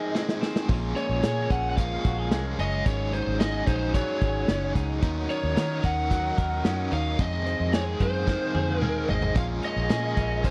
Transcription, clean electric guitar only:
0, 0, Header, 1, 2, 480
1, 0, Start_track
1, 0, Tempo, 542005
1, 612, Time_signature, 4, 2, 24, 8
1, 9302, End_track
2, 0, Start_track
2, 0, Title_t, "Clean electric guitar"
2, 0, Program_c, 0, 27
2, 0, Note_on_c, 0, 41, 87
2, 0, Note_on_c, 0, 51, 63
2, 0, Note_on_c, 0, 56, 62
2, 0, Note_on_c, 0, 60, 62
2, 0, Note_on_c, 0, 68, 68
2, 124, Note_off_c, 0, 56, 0
2, 127, Note_on_c, 0, 56, 58
2, 355, Note_off_c, 0, 60, 0
2, 366, Note_on_c, 0, 60, 57
2, 605, Note_on_c, 0, 46, 79
2, 612, Note_off_c, 0, 41, 0
2, 656, Note_off_c, 0, 51, 0
2, 657, Note_off_c, 0, 60, 0
2, 846, Note_on_c, 0, 61, 61
2, 1083, Note_off_c, 0, 68, 0
2, 1087, Note_on_c, 0, 68, 64
2, 1326, Note_off_c, 0, 61, 0
2, 1329, Note_on_c, 0, 61, 59
2, 1571, Note_on_c, 0, 53, 67
2, 1810, Note_off_c, 0, 68, 0
2, 1814, Note_on_c, 0, 66, 68
2, 1840, Note_off_c, 0, 56, 0
2, 1934, Note_off_c, 0, 66, 0
2, 1934, Note_on_c, 0, 68, 57
2, 2054, Note_on_c, 0, 56, 59
2, 2289, Note_off_c, 0, 61, 0
2, 2292, Note_on_c, 0, 61, 57
2, 2529, Note_off_c, 0, 46, 0
2, 2532, Note_on_c, 0, 44, 82
2, 2579, Note_off_c, 0, 53, 0
2, 2581, Note_off_c, 0, 68, 0
2, 2768, Note_off_c, 0, 61, 0
2, 2772, Note_on_c, 0, 63, 56
2, 3012, Note_on_c, 0, 68, 62
2, 3246, Note_off_c, 0, 63, 0
2, 3250, Note_on_c, 0, 63, 67
2, 3492, Note_on_c, 0, 54, 71
2, 3518, Note_off_c, 0, 56, 0
2, 3727, Note_off_c, 0, 68, 0
2, 3738, Note_on_c, 0, 68, 63
2, 3972, Note_on_c, 0, 61, 60
2, 4211, Note_off_c, 0, 63, 0
2, 4215, Note_on_c, 0, 63, 60
2, 4449, Note_on_c, 0, 51, 87
2, 4451, Note_off_c, 0, 44, 0
2, 4502, Note_off_c, 0, 68, 0
2, 4683, Note_off_c, 0, 63, 0
2, 4687, Note_on_c, 0, 63, 58
2, 4713, Note_off_c, 0, 61, 0
2, 4927, Note_on_c, 0, 70, 67
2, 5163, Note_off_c, 0, 63, 0
2, 5167, Note_on_c, 0, 63, 61
2, 5405, Note_off_c, 0, 54, 0
2, 5408, Note_on_c, 0, 54, 78
2, 5636, Note_off_c, 0, 70, 0
2, 5647, Note_on_c, 0, 70, 70
2, 5887, Note_on_c, 0, 61, 62
2, 6121, Note_off_c, 0, 63, 0
2, 6125, Note_on_c, 0, 63, 50
2, 6416, Note_off_c, 0, 70, 0
2, 6417, Note_off_c, 0, 54, 0
2, 6417, Note_off_c, 0, 61, 0
2, 6599, Note_off_c, 0, 63, 0
2, 6602, Note_on_c, 0, 60, 56
2, 6845, Note_on_c, 0, 68, 72
2, 7073, Note_off_c, 0, 60, 0
2, 7083, Note_on_c, 0, 60, 64
2, 7325, Note_off_c, 0, 51, 0
2, 7325, Note_on_c, 0, 51, 68
2, 7564, Note_off_c, 0, 68, 0
2, 7568, Note_on_c, 0, 68, 69
2, 7807, Note_on_c, 0, 56, 56
2, 8037, Note_off_c, 0, 60, 0
2, 8048, Note_on_c, 0, 60, 50
2, 8286, Note_on_c, 0, 46, 74
2, 8335, Note_off_c, 0, 51, 0
2, 8337, Note_off_c, 0, 60, 0
2, 8525, Note_on_c, 0, 61, 59
2, 8767, Note_off_c, 0, 68, 0
2, 8770, Note_on_c, 0, 68, 74
2, 9004, Note_off_c, 0, 61, 0
2, 9007, Note_on_c, 0, 61, 67
2, 9252, Note_on_c, 0, 53, 74
2, 9302, Note_off_c, 0, 46, 0
2, 9302, Note_off_c, 0, 53, 0
2, 9302, Note_off_c, 0, 56, 0
2, 9302, Note_off_c, 0, 61, 0
2, 9302, Note_off_c, 0, 68, 0
2, 9302, End_track
0, 0, End_of_file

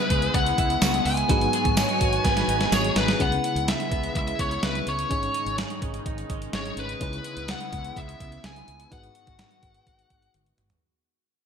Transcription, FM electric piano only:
0, 0, Header, 1, 2, 480
1, 0, Start_track
1, 0, Key_signature, 4, "minor"
1, 0, Tempo, 476190
1, 1306, Time_signature, 4, 2, 24, 8
1, 11542, End_track
2, 0, Start_track
2, 0, Title_t, "FM electric piano"
2, 0, Program_c, 0, 5
2, 0, Control_c, 0, 64, 127
2, 0, Note_on_c, 0, 49, 66
2, 0, Note_on_c, 0, 59, 67
2, 0, Note_on_c, 0, 61, 60
2, 0, Note_on_c, 0, 64, 58
2, 0, Note_on_c, 0, 68, 65
2, 0, Note_on_c, 0, 71, 70
2, 1261, Note_off_c, 0, 59, 0
2, 1264, Note_off_c, 0, 61, 0
2, 1267, Note_off_c, 0, 64, 0
2, 1270, Note_off_c, 0, 68, 0
2, 1273, Note_off_c, 0, 71, 0
2, 1295, Note_on_c, 0, 59, 67
2, 1300, Note_on_c, 0, 63, 62
2, 1307, Note_on_c, 0, 44, 64
2, 1307, Note_on_c, 0, 66, 59
2, 1313, Note_on_c, 0, 68, 61
2, 1319, Note_on_c, 0, 71, 76
2, 1320, Control_c, 0, 64, 0
2, 1325, Note_off_c, 0, 49, 0
2, 1476, Control_c, 0, 64, 127
2, 1986, Note_off_c, 0, 44, 0
2, 3182, Note_off_c, 0, 59, 0
2, 3184, Note_off_c, 0, 63, 0
2, 3188, Note_off_c, 0, 66, 0
2, 3191, Note_off_c, 0, 68, 0
2, 3194, Note_off_c, 0, 71, 0
2, 3214, Note_on_c, 0, 61, 60
2, 3221, Note_on_c, 0, 64, 57
2, 3226, Note_on_c, 0, 49, 59
2, 3231, Note_on_c, 0, 68, 55
2, 3236, Note_on_c, 0, 71, 63
2, 3238, Control_c, 0, 64, 0
2, 3428, Control_c, 0, 64, 127
2, 3906, Note_off_c, 0, 49, 0
2, 5101, Note_off_c, 0, 61, 0
2, 5105, Note_off_c, 0, 64, 0
2, 5110, Note_off_c, 0, 68, 0
2, 5113, Note_off_c, 0, 71, 0
2, 5134, Note_on_c, 0, 61, 63
2, 5143, Note_on_c, 0, 63, 54
2, 5146, Note_on_c, 0, 44, 57
2, 5150, Note_on_c, 0, 68, 55
2, 5158, Note_on_c, 0, 73, 63
2, 5160, Control_c, 0, 64, 0
2, 5345, Control_c, 0, 64, 127
2, 5826, Note_off_c, 0, 44, 0
2, 6551, Note_off_c, 0, 61, 0
2, 6556, Note_off_c, 0, 63, 0
2, 6559, Note_off_c, 0, 68, 0
2, 6563, Note_off_c, 0, 73, 0
2, 6581, Note_on_c, 0, 61, 41
2, 6585, Note_on_c, 0, 63, 40
2, 6590, Note_on_c, 0, 68, 40
2, 6592, Note_on_c, 0, 73, 47
2, 7045, Note_off_c, 0, 61, 0
2, 7057, Note_on_c, 0, 61, 61
2, 7062, Note_off_c, 0, 68, 0
2, 7066, Note_off_c, 0, 63, 0
2, 7066, Note_on_c, 0, 64, 54
2, 7069, Note_off_c, 0, 73, 0
2, 7070, Note_on_c, 0, 49, 60
2, 7074, Note_on_c, 0, 68, 51
2, 7077, Control_c, 0, 64, 0
2, 7082, Note_on_c, 0, 71, 64
2, 7232, Control_c, 0, 64, 127
2, 7747, Note_off_c, 0, 49, 0
2, 8943, Note_off_c, 0, 61, 0
2, 8948, Note_off_c, 0, 64, 0
2, 8952, Note_off_c, 0, 68, 0
2, 8956, Note_off_c, 0, 71, 0
2, 8976, Note_on_c, 0, 63, 55
2, 8984, Note_on_c, 0, 66, 53
2, 8987, Note_on_c, 0, 44, 58
2, 8993, Note_on_c, 0, 68, 50
2, 8998, Note_on_c, 0, 71, 61
2, 9000, Control_c, 0, 64, 0
2, 9201, Control_c, 0, 64, 127
2, 9666, Note_off_c, 0, 44, 0
2, 10863, Note_off_c, 0, 63, 0
2, 10867, Note_off_c, 0, 66, 0
2, 10871, Note_off_c, 0, 68, 0
2, 10874, Note_off_c, 0, 71, 0
2, 10918, Control_c, 0, 64, 0
2, 11542, End_track
0, 0, End_of_file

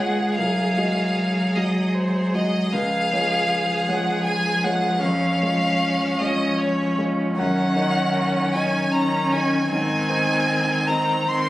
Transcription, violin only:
0, 0, Header, 1, 2, 480
1, 0, Start_track
1, 0, Key_signature, -5, "major"
1, 0, Tempo, 790514
1, 217, Time_signature, 3, 2, 24, 8
1, 2133, Tempo, 760456
1, 3093, Tempo, 782269
1, 7055, End_track
2, 0, Start_track
2, 0, Title_t, "Violin"
2, 0, Program_c, 0, 40
2, 0, Note_on_c, 0, 78, 53
2, 211, Note_off_c, 0, 78, 0
2, 214, Note_on_c, 0, 77, 61
2, 940, Note_on_c, 0, 75, 50
2, 949, Note_off_c, 0, 77, 0
2, 1176, Note_on_c, 0, 72, 52
2, 1185, Note_off_c, 0, 75, 0
2, 1419, Note_on_c, 0, 75, 60
2, 1428, Note_off_c, 0, 72, 0
2, 1653, Note_on_c, 0, 77, 71
2, 1662, Note_off_c, 0, 75, 0
2, 2365, Note_on_c, 0, 78, 60
2, 2375, Note_off_c, 0, 77, 0
2, 2588, Note_off_c, 0, 78, 0
2, 2591, Note_on_c, 0, 80, 67
2, 2842, Note_on_c, 0, 78, 64
2, 2852, Note_off_c, 0, 80, 0
2, 3071, Note_on_c, 0, 77, 77
2, 3081, Note_off_c, 0, 78, 0
2, 3800, Note_on_c, 0, 75, 69
2, 3809, Note_off_c, 0, 77, 0
2, 4040, Note_on_c, 0, 73, 64
2, 4049, Note_off_c, 0, 75, 0
2, 4282, Note_off_c, 0, 73, 0
2, 4523, Note_on_c, 0, 78, 83
2, 5241, Note_on_c, 0, 80, 77
2, 5250, Note_off_c, 0, 78, 0
2, 5475, Note_on_c, 0, 82, 71
2, 5484, Note_off_c, 0, 80, 0
2, 5721, Note_on_c, 0, 80, 70
2, 5730, Note_off_c, 0, 82, 0
2, 5951, Note_off_c, 0, 80, 0
2, 5955, Note_on_c, 0, 80, 88
2, 6675, Note_on_c, 0, 82, 72
2, 6684, Note_off_c, 0, 80, 0
2, 6922, Note_on_c, 0, 84, 74
2, 6931, Note_off_c, 0, 82, 0
2, 7055, Note_off_c, 0, 84, 0
2, 7055, End_track
0, 0, End_of_file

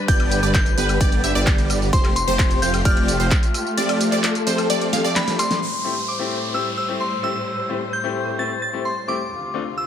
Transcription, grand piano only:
0, 0, Header, 1, 2, 480
1, 0, Start_track
1, 0, Key_signature, 0, "minor"
1, 0, Tempo, 461538
1, 86, Time_signature, 4, 2, 24, 8
1, 10263, End_track
2, 0, Start_track
2, 0, Title_t, "Grand piano"
2, 0, Program_c, 0, 0
2, 6080, Note_on_c, 0, 57, 77
2, 6084, Note_on_c, 0, 60, 71
2, 6088, Note_on_c, 0, 64, 71
2, 6092, Note_on_c, 0, 67, 84
2, 6158, Note_off_c, 0, 57, 0
2, 6160, Note_off_c, 0, 60, 0
2, 6162, Note_off_c, 0, 64, 0
2, 6164, Note_off_c, 0, 67, 0
2, 6440, Note_on_c, 0, 57, 79
2, 6444, Note_on_c, 0, 60, 80
2, 6448, Note_on_c, 0, 64, 76
2, 6453, Note_on_c, 0, 67, 90
2, 6774, Note_off_c, 0, 57, 0
2, 6776, Note_off_c, 0, 60, 0
2, 6779, Note_off_c, 0, 64, 0
2, 6781, Note_off_c, 0, 67, 0
2, 6800, Note_on_c, 0, 57, 73
2, 6804, Note_on_c, 0, 60, 70
2, 6808, Note_on_c, 0, 64, 72
2, 6812, Note_on_c, 0, 67, 84
2, 6923, Note_off_c, 0, 57, 0
2, 6925, Note_off_c, 0, 60, 0
2, 6928, Note_off_c, 0, 64, 0
2, 6930, Note_off_c, 0, 67, 0
2, 7160, Note_on_c, 0, 57, 69
2, 7164, Note_on_c, 0, 60, 62
2, 7168, Note_on_c, 0, 64, 68
2, 7172, Note_on_c, 0, 67, 76
2, 7283, Note_off_c, 0, 57, 0
2, 7285, Note_off_c, 0, 60, 0
2, 7287, Note_off_c, 0, 64, 0
2, 7290, Note_off_c, 0, 67, 0
2, 7520, Note_on_c, 0, 57, 74
2, 7524, Note_on_c, 0, 60, 70
2, 7528, Note_on_c, 0, 64, 69
2, 7533, Note_on_c, 0, 67, 85
2, 7598, Note_off_c, 0, 57, 0
2, 7600, Note_off_c, 0, 60, 0
2, 7603, Note_off_c, 0, 64, 0
2, 7605, Note_off_c, 0, 67, 0
2, 8000, Note_on_c, 0, 57, 75
2, 8005, Note_on_c, 0, 60, 69
2, 8009, Note_on_c, 0, 64, 69
2, 8013, Note_on_c, 0, 67, 84
2, 8079, Note_off_c, 0, 57, 0
2, 8081, Note_off_c, 0, 60, 0
2, 8083, Note_off_c, 0, 64, 0
2, 8085, Note_off_c, 0, 67, 0
2, 8360, Note_on_c, 0, 57, 88
2, 8364, Note_on_c, 0, 60, 79
2, 8368, Note_on_c, 0, 64, 75
2, 8373, Note_on_c, 0, 67, 95
2, 8695, Note_off_c, 0, 57, 0
2, 8697, Note_off_c, 0, 60, 0
2, 8699, Note_off_c, 0, 64, 0
2, 8701, Note_off_c, 0, 67, 0
2, 8720, Note_on_c, 0, 57, 77
2, 8725, Note_on_c, 0, 60, 70
2, 8729, Note_on_c, 0, 64, 70
2, 8733, Note_on_c, 0, 67, 81
2, 8844, Note_off_c, 0, 57, 0
2, 8846, Note_off_c, 0, 60, 0
2, 8848, Note_off_c, 0, 64, 0
2, 8850, Note_off_c, 0, 67, 0
2, 9080, Note_on_c, 0, 57, 70
2, 9085, Note_on_c, 0, 60, 67
2, 9089, Note_on_c, 0, 64, 67
2, 9093, Note_on_c, 0, 67, 78
2, 9204, Note_off_c, 0, 57, 0
2, 9206, Note_off_c, 0, 60, 0
2, 9208, Note_off_c, 0, 64, 0
2, 9210, Note_off_c, 0, 67, 0
2, 9441, Note_on_c, 0, 57, 76
2, 9445, Note_on_c, 0, 60, 71
2, 9449, Note_on_c, 0, 64, 69
2, 9453, Note_on_c, 0, 67, 86
2, 9519, Note_off_c, 0, 57, 0
2, 9521, Note_off_c, 0, 60, 0
2, 9523, Note_off_c, 0, 64, 0
2, 9525, Note_off_c, 0, 67, 0
2, 9920, Note_on_c, 0, 57, 82
2, 9925, Note_on_c, 0, 60, 75
2, 9929, Note_on_c, 0, 62, 75
2, 9933, Note_on_c, 0, 65, 83
2, 9998, Note_off_c, 0, 57, 0
2, 10001, Note_off_c, 0, 60, 0
2, 10003, Note_off_c, 0, 62, 0
2, 10005, Note_off_c, 0, 65, 0
2, 10263, End_track
0, 0, End_of_file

